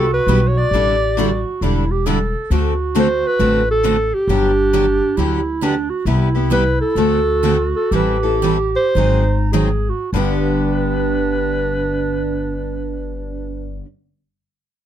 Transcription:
Already playing: C2 F#4
0.13 B4
0.27 B1 G3 B3 E4 G4
0.47 C#5
0.57 D5
0.71 A1 D3 G3 D4 E4 G4 A4
1.17 D3 G3 D4 E4 F#4 A4
1.61 E1 D3 G3 D4 E4 A4
1.91 G4
2.06 D3 G3 D4 E4 A4
2.50 D2 D3 A3 C4 F#4 A4
2.95 D3 A3 C4 F#4 A4
2.99 C5
3.27 B4
3.39 A1 D3 A3 C4 F#4 A4
3.71 A4
3.83 D3 A3 C4 F#4 A4
4.14 G4
4.28 G1 D3 F#3 B3 D4 G4
4.73 D3 F#3 B3 D4 G4
5.17 D2 D3 F#3 B3 D4 E4 G4
5.63 D3 F#3 B3 D4 G4
5.90 F#4
6.05 C2 C3 G3 B3 E4 G4
6.35 B3 E4 G4
6.52 C3 G3 B3 E4 G4 B4
6.81 A4
6.95 D2 D3 A3 C4 F#4 A4
7.44 D3 A3 C4 F#4 A4
7.76 A4
7.91 A1 E3 G3 C4 E4 G4 A4 B4
8.23 C4 E4 A4
8.44 E3 G3 C4 E4 A4
8.76 C5
8.95 G#1 D#3 F#3 C4 D#4 G#4
9.53 D#3 F#3 C4 D#4 G#4
9.90 F#4
10.13 G1 G2 D3 B3 D4 G4 B4

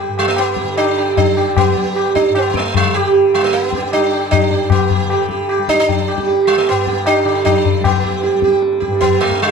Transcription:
Already playing: D3 G3
0.00 G4
0.09 G2
0.18 G3, tabla na
0.28 A3
0.36 B3, tabla na
0.57 G4, tabla ke
0.64 D3
0.77 D4, tabla na
0.97 G4, tabla na
1.17 G3 D4, tabla tin, tabla ge
1.37 G4, tabla na
1.57 B3, tabla na, tabla ge
1.74 G3 G4, tabla ge
1.95 G4, tabla na
2.15 D4, tabla ke
2.30 G2
2.35 B3, tabla na
2.50 B3
2.54 A3, tabla ke
2.74 G3, tabla tin, tabla ge
2.85 D3
2.94 G4, tabla na
3.14 G4, tabla tin
3.34 G3, tabla na
3.40 G3 B3
3.44 A3
3.53 B3, tabla te
3.63 tabla te
3.73 G4, tabla ke
3.83 tabla te
3.92 G3 D4, tabla na
4.12 G4, tabla na
4.31 D4, tabla na, tabla ge
4.49 G2 G4, tabla te
4.70 B3, tabla na, tabla ge
4.90 G4, tabla ge
5.04 D3
5.10 G4, tabla na
5.29 G4, tabla ke
5.49 G4, tabla na
5.58 G3
5.69 D4, tabla ke
5.80 D4
5.89 tabla tin, tabla ge
6.08 G4, tabla na
6.15 G3, tabla ke
6.27 G4, tabla tin
6.47 G3, tabla na
6.58 A3
6.67 G2 B3, tabla na
6.87 G4, tabla ke
7.06 D4, tabla na
7.25 D3 G4, tabla na
7.45 D4, tabla na, tabla ge
7.65 tabla ge
7.80 G3
7.84 B3, tabla na, tabla ge
8.04 G4, tabla ge
8.23 G4, tabla te
8.33 G3, tabla te
8.42 G4, tabla ke
8.52 tabla te
8.62 tabla te
8.73 tabla te
8.80 G4, tabla ke
8.88 G2
8.93 tabla te
9.01 B3, tabla tin, tabla ge
9.21 A3, tabla na
9.31 tabla ke
9.41 D3 G3, tabla tin

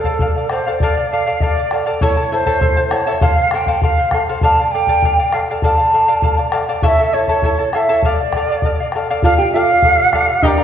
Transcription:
Already playing: A4
0.04 A4 D5 F5, bombo low
0.19 A4 D5 F5, bombo low
0.36 D5 F5
0.50 A4 C5 D5 F5, bombo rim
0.66 A4 D5 F5
0.80 A4 D5 F5, bombo low
0.97 D5 F5
1.10 A4 D5 F5
1.26 A4 D5 F5
1.35 F5
1.40 A4 D5 F5, bombo low
1.57 D5 F5
1.71 A4 D5 F5, bombo rim
1.86 A4 D5 F5
2.01 E4 A4 C#5 E5 A5, bombo low
2.17 E4 A4 A5
2.32 E4 A4 C5 E5 A5
2.46 E4 A4 C#5 E5 A5, bombo low
2.61 E4 A4 E5 A5, bombo low
2.77 E4 A4 A5
2.91 E4 A4 C#5 E5 A5, bombo rim
3.07 E4 A4 C#5 E5 A5
3.21 A4 C5 F5, bombo low
3.36 C5 F5
3.51 A4 C5 F5 G5, bombo rim
3.66 A4 C5 F5, bombo low
3.82 A4 C5 F5, bombo low
3.98 C5 F5
4.11 A4 C5 F5, bombo rim, bombo low
4.29 A4 C5 F5
4.41 A4 D5 F5 A5, bombo low
4.59 D5 F5
4.64 A5
4.71 A4 D5 F5 G5
4.87 A4 D5 F5, bombo low
5.02 A4 D5 F5, bombo low
5.19 D5 F5
5.32 A4 D5 F5, bombo rim
5.51 A4 D5 F5
5.62 A4 D5 F5 A5, bombo low
5.77 D5 F5
5.93 A4 D5 F5
6.08 A4 D5 F5
6.22 A4 D5 F5, bombo low
6.38 D5 F5
6.52 A4 D5 F5, bombo rim
6.69 A4 D5 F5
6.82 E4 A4 C#5 E5 F5 A5, bombo low
6.99 E4 A4 A5
7.13 E4 A4 C#5 E5 A5
7.27 E4 A4 C#5 E5 A5, bombo low
7.42 E4 A4 E5 A5, bombo low
7.58 E4 A4 A5
7.73 E4 A4 E5 F5 A5, bombo rim
7.77 E5
7.89 E4 A4 C#5 E5 A5
8.02 A4 D5 F5, bombo low
8.20 D5 F5
8.33 A4, bombo rim, bombo low
8.37 D5 F5
8.51 A4 D5 F5
8.62 A4 D5 F5, bombo low
8.80 D5 F5
8.92 A4 D5, bombo rim
8.97 F5
9.10 A4 D5 F5
9.23 F4 A4 D5 F5, bombo low
9.37 G4 F5 G5
9.42 D5
9.52 F4 A4 D5 F5
9.70 D5 F5
9.82 A4 D5 F5, bombo low
9.99 D5 F5
10.13 A4 D5 F5, bombo rim, bombo low
10.29 D5 F5
10.42 D4 G4 A#4 D5 D#5 G5 A#5, bombo low
10.47 D5
10.58 A#4 D5 A#5

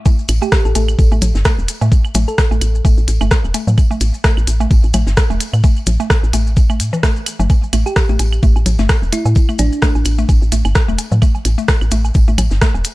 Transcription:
0.05 A3, kick, tambourine, low woodblock, maracas
0.18 closed hi-hat, maracas
0.28 A1, closed hi-hat, tambourine, claves, maracas
0.42 A3 G4, closed hi-hat, low woodblock, maracas
0.52 kick, cross-stick, snare, tambourine, maracas
0.65 A1 A4, maracas
0.75 A1 A3 A4, closed hi-hat, tambourine, low woodblock, maracas
0.88 claves, maracas
0.99 A1, kick, tambourine, maracas
1.12 A1 A3, low woodblock, maracas
1.21 A1, closed hi-hat, tambourine, low conga, maracas
1.35 G1, snare, maracas
1.45 A3, kick, cross-stick, snare, closed hi-hat, tambourine, claves, low woodblock, maracas
1.58 E1, maracas
1.68 closed hi-hat, tambourine, maracas
1.81 A2 A3, low woodblock, maracas
1.92 kick, tambourine, maracas
2.05 claves, maracas
2.15 A1 A3, closed hi-hat, tambourine, low conga, low woodblock, maracas
2.28 A4, maracas
2.38 kick, cross-stick, snare, tambourine, maracas
2.51 A1 A3, low woodblock, maracas
2.61 A1, closed hi-hat, tambourine, claves, maracas
2.75 maracas
2.85 A1 A3, kick, tambourine, low woodblock, maracas
2.98 A1, maracas
3.08 A1, closed hi-hat, tambourine, maracas
3.19 G1 A3, closed hi-hat, claves, low woodblock, maracas
3.31 kick, cross-stick, snare, closed hi-hat, tambourine, maracas
3.44 E1, maracas
3.54 A3, closed hi-hat, tambourine, low woodblock, maracas
3.67 A2, low conga, maracas
3.77 kick, tambourine, claves, maracas
3.91 A3, closed hi-hat, low woodblock, maracas
4.00 A1, closed hi-hat, tambourine, maracas
4.14 closed hi-hat, maracas
4.24 A3, kick, cross-stick, snare, tambourine, low woodblock, maracas
4.37 A1, claves, maracas
4.47 A1, closed hi-hat, tambourine, maracas
4.60 A3, low woodblock, maracas
4.71 A1, kick, tambourine, maracas
4.83 A1, maracas
4.94 A1 A3, closed hi-hat, tambourine, low conga, claves, low woodblock, maracas
5.07 G1, snare, maracas
5.17 kick, cross-stick, snare, closed hi-hat, tambourine, maracas
5.30 E1 A3, low woodblock, maracas
5.40 closed hi-hat, tambourine, maracas
5.53 A2, claves, maracas
5.64 A3, kick, tambourine, low woodblock, maracas
5.76 maracas
5.87 A1, closed hi-hat, tambourine, low conga, maracas
6.00 A3, low woodblock, maracas
6.10 kick, cross-stick, snare, tambourine, claves, maracas
6.23 A1, maracas
6.33 A1 A3, closed hi-hat, tambourine, low woodblock, maracas
6.47 maracas
6.56 kick, tambourine, maracas
6.70 A3, claves, low woodblock, maracas
6.80 A2, closed hi-hat, tambourine, maracas
6.93 E3, closed hi-hat, maracas
7.03 A3, kick, cross-stick, snare, closed hi-hat, tambourine, low woodblock, maracas
7.16 maracas
7.26 closed hi-hat, tambourine, claves, maracas
7.39 G1 A3, low conga, low woodblock, maracas
7.50 kick, tambourine, low woodblock, maracas
7.63 closed hi-hat, maracas
7.73 A1 A3, closed hi-hat, tambourine, claves, maracas
7.86 G4, closed hi-hat, low woodblock, maracas
7.96 kick, cross-stick, snare, tambourine, maracas
8.09 A1 A3, maracas
8.19 A1, closed hi-hat, tambourine, low woodblock, maracas
8.33 claves, maracas
8.42 A1 A3, kick, tambourine, maracas
8.56 A1, low woodblock, maracas
8.66 A1, closed hi-hat, tambourine, low conga, maracas
8.78 G1 A3, snare, maracas
8.89 kick, cross-stick, snare, closed hi-hat, tambourine, claves, low woodblock, maracas
9.02 E1, maracas
9.13 A3 E4, closed hi-hat, tambourine, maracas
9.25 A2, low woodblock, maracas
9.35 kick, tambourine, maracas
9.49 A3, claves, maracas
9.59 A1 D4, closed hi-hat, tambourine, low conga, low woodblock, maracas
9.72 maracas
9.82 A3, kick, cross-stick, snare, tambourine, maracas
9.95 A1, low woodblock, maracas
10.05 A1, closed hi-hat, tambourine, claves, maracas
10.18 A3, maracas
10.29 A1, kick, tambourine, low woodblock, maracas
10.42 A1, maracas
10.52 A1 A3, closed hi-hat, tambourine, maracas
10.65 G1, closed hi-hat, claves, low woodblock, maracas
10.75 kick, cross-stick, snare, closed hi-hat, tambourine, maracas
10.88 E1 A3, maracas
10.98 closed hi-hat, tambourine, low woodblock, maracas
11.12 A2, low conga, maracas
11.22 A3, kick, tambourine, claves, maracas
11.35 closed hi-hat, low woodblock, maracas
11.45 A1, closed hi-hat, tambourine, maracas
11.58 A3, closed hi-hat, maracas
11.68 kick, cross-stick, snare, tambourine, low woodblock, maracas
11.81 A1, claves, maracas
11.91 A1 A3, closed hi-hat, tambourine, maracas
12.05 low woodblock, maracas
12.14 A1, kick, tambourine, maracas
12.28 A1 A3, maracas
12.38 A1, closed hi-hat, tambourine, low conga, claves, low woodblock, maracas
12.51 G1, snare, maracas
12.61 A3, kick, cross-stick, snare, closed hi-hat, tambourine, maracas
12.74 E1, low woodblock, maracas
12.84 closed hi-hat, tambourine, maracas

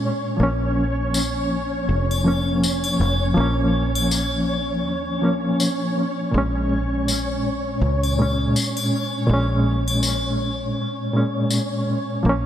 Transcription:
Already playing: A#2 G#3 C#4 C#5
0.37 A#1 F3 A#3
0.43 C#4
1.14 tambourine
1.89 F1
2.11 triangle
2.24 F3 A#3 C#4
2.63 tambourine
2.84 triangle
3.00 F1
3.34 A#1 F3 A#3
3.40 C#4
3.95 triangle
4.11 tambourine
4.86 D#2
5.21 F3 A#3 C#4
5.45 A#1
5.60 tambourine
6.31 A#1 A#2 G#3
6.38 C#4
7.08 tambourine
7.81 C#2
8.03 triangle
8.18 A#2 G#3 C#4
8.56 tambourine
8.77 triangle
9.27 A#1 A#2 G#3
9.34 C#4
9.88 triangle
10.03 tambourine
11.13 A#2 G#3 C#4
11.51 tambourine
12.23 A#1 F3 A#3
12.29 C#4

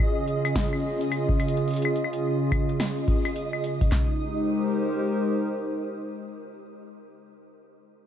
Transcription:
Already playing: C#3 C#4 F4 G#4 D#5
0.00 claves
0.28 closed hi-hat
0.45 closed hi-hat, claves
0.56 kick, snare, closed hi-hat
0.73 claves
1.01 closed hi-hat
1.12 closed hi-hat, claves
1.29 kick
1.40 closed hi-hat, claves
1.48 closed hi-hat
1.57 closed hi-hat
1.68 closed hi-hat
1.71 closed hi-hat
1.74 closed hi-hat
1.76 closed hi-hat
1.82 closed hi-hat, claves
1.96 closed hi-hat
2.04 claves
2.13 closed hi-hat
2.52 kick, closed hi-hat, claves
2.69 closed hi-hat
2.80 snare, closed hi-hat, claves
3.08 kick, closed hi-hat
3.25 closed hi-hat, claves
3.36 closed hi-hat
3.53 claves
3.64 closed hi-hat
3.81 kick, closed hi-hat
3.92 G#3, kick, snare, clap
4.02 D#4
4.12 G4
4.18 A#4
4.27 C5

